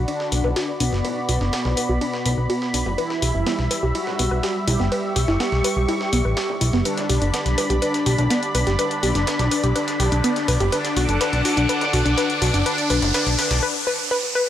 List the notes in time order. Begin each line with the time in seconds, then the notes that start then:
Already playing: F#4 D5 B5
0.08 D4, ride
0.20 snare
0.32 B1 B3, open hi-hat, ride
0.44 B1 B4, mid tom
0.56 F#4, snare, ride
0.80 B1 B3 D4, open hi-hat, ride
0.92 F#1 B3, snare
1.05 B4, mid tom, ride
1.29 B1 F#4, open hi-hat, ride
1.41 F#1 D4, snare
1.53 B3, snare, ride
1.65 B1, snare, mid tom
1.77 B4, open hi-hat, ride
1.89 B1 F#4
2.01 D4, ride
2.13 snare
2.26 B1 B3, mid tom, open hi-hat, ride
2.38 B1 B4
2.50 F#4, ride
2.62 snare
2.74 B1 D4, open hi-hat
2.86 F#1 B3, mid tom
2.98 G3 E4 B4 E5, ride
3.10 snare
3.22 B1 G4, open hi-hat
3.35 F#1 E4
3.47 B3, snare, mid tom, ride
3.59 B1, snare
3.71 B4, snare, open hi-hat, ride
3.83 B1 G4
3.95 E4 F#4, ride
4.07 snare, mid tom
4.19 B1 B3, open hi-hat, ride
4.31 B1 B4
4.43 G4, snare, ride
4.68 B1 E4 G4, mid tom, open hi-hat, ride
4.80 F#1 B3, snare
4.92 B4 C#6, ride
5.16 B1 G4, open hi-hat, ride
5.28 F#1 E4, snare, mid tom
5.40 B3, snare, ride
5.52 B1, snare
5.64 B4, open hi-hat, ride
5.77 B1 G4
5.88 E4, mid tom, ride
6.01 snare
6.13 B1 B3, open hi-hat, ride
6.25 A1 B4
6.37 G4, snare, ride
6.49 mid tom
6.61 B1 E4, open hi-hat, ride
6.73 F#1 B3, snare
6.85 D4 B4 D5 B5, closed hi-hat, ride, riser
6.97 snare, closed hi-hat, mid tom
7.09 B1 G4, open hi-hat
7.22 F#1 D4, closed hi-hat
7.34 B3, snare, closed hi-hat, ride
7.46 B1, snare, closed hi-hat
7.58 B4, snare, mid tom, open hi-hat, ride
7.70 B1 G4, closed hi-hat
7.82 D4 B4, closed hi-hat, ride
7.94 snare, closed hi-hat
8.06 B1 G4, open hi-hat, ride
8.18 B1 D4, closed hi-hat, mid tom
8.30 B3, snare, closed hi-hat, ride
8.43 closed hi-hat
8.55 B1 B4, open hi-hat, ride
8.67 F#1 G4, snare, closed hi-hat
8.79 D4 B4, closed hi-hat, mid tom, ride
8.91 closed hi-hat
9.03 B1 G4, open hi-hat, ride
9.15 F#1 D4, snare, closed hi-hat
9.27 B3, snare, closed hi-hat, ride
9.39 B1, snare, closed hi-hat, mid tom
9.51 B4, open hi-hat, ride
9.64 B1 G4, closed hi-hat
9.76 D4 B4, closed hi-hat, ride
9.88 snare, closed hi-hat
10.00 B1 G4, mid tom, open hi-hat, ride
10.12 B1 D4, closed hi-hat
10.24 B3, closed hi-hat, ride
10.36 snare, closed hi-hat
10.48 B1 B4, open hi-hat
10.60 F#1 G4, closed hi-hat, mid tom
10.72 D4 A4 B4 F#5 D6, closed hi-hat, ride
10.85 snare, closed hi-hat
10.97 B1 F#4, open hi-hat
11.09 F#1 D4, closed hi-hat
11.21 D4 B4, snare, closed hi-hat, mid tom, ride
11.33 B1, snare, closed hi-hat
11.45 F#4, snare, open hi-hat, ride
11.57 B1 D4, closed hi-hat
11.69 D4 B4, closed hi-hat, ride
11.81 snare, closed hi-hat, mid tom
11.93 B1 F#4, open hi-hat, ride
12.05 B1 D4, closed hi-hat
12.17 D4 B4, snare, closed hi-hat, ride
12.30 closed hi-hat
12.42 B1 F#4, mid tom, open hi-hat, ride
12.54 F#1 D4, snare, closed hi-hat
12.66 D4 B4, closed hi-hat, ride
12.78 closed hi-hat
12.90 B1 D4 B4, open hi-hat, ride
13.02 F#1, snare, closed hi-hat, mid tom
13.14 D4 B4, snare, closed hi-hat, ride
13.26 B1, snare, closed hi-hat
13.38 D4 B4, snare, open hi-hat, ride
13.51 B1, snare, closed hi-hat, ride
13.63 B4
13.87 B4
14.11 B4
14.35 B4